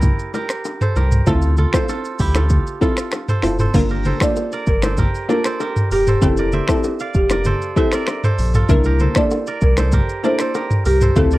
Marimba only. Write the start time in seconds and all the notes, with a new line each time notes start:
3.76 A#4
4.23 D5
4.69 A#4
5.30 A#4
5.92 G4
6.23 A4
6.70 A4
7.16 G4
7.78 A4
8.70 A#4
9.18 D5
9.63 A#4
10.25 C5
10.87 G4
11.18 A4